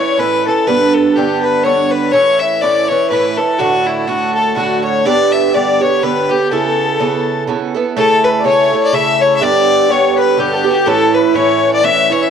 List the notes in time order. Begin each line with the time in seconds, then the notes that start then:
Already playing: E4 C#5
0.00 E3 C#4
0.18 A2 E3 C#4 E4 B4
0.46 E3 C#4 E4 A4
0.67 G2 D3 B3 D4 B4
0.94 A4
1.15 G2 D3 B3 D4 G4
1.42 B4
1.63 G2 D3 B3 D4 C#5
1.91 B4
2.11 A2 E3 C#4 E4 C#5
2.39 E5
2.61 A2 E3 C#4 E4 D5
2.88 E3 C#4 E4 C#5
3.09 A2 E3 C#4 E4 B4
3.37 E3 C#4 E4 A4
3.59 A2 D3 A3 F#4
3.86 E4
4.07 A2 D3 A3 F#4
4.34 A4
4.55 A2 D3 A3 F#4
4.84 C#5
5.05 G2 D3 B3 G4 D5
5.32 E5
5.54 G2 D3 B3 G4 D5
5.80 D3 B3 G4 C#5
6.02 G2 D3 B3 G4 B4
6.29 D3 B3 G4
6.51 C#3 B3 E4 A4
7.00 C#3 B3 E4 A4
7.47 C#3 B3 E4 A4
7.75 B3 E4 A4
7.96 C#3 A3 E4 A4
8.24 B4
8.39 D5
8.44 C#3 A3 E4 A4 C#5
8.72 A3 E4 A4
8.83 D5
8.93 C#3 A3 E4 A4 E5
9.20 C#5
9.36 E5
9.41 G2 D3 B3 G4 D5
9.88 G2 D3 B3 G4 C#5
10.16 B4
10.37 G2 D3 B3 G4
10.53 G4 A4
10.64 D3 B3 G4
10.70 F#4 G4
10.86 A2 E3 C#4 E4 A4
11.14 B4
11.34 A2 E3 C#4 E4 C#5
11.73 D5
11.83 A2 E3 C#4 E4 E5
12.10 E3 C#4 E4 C#5
12.21 E5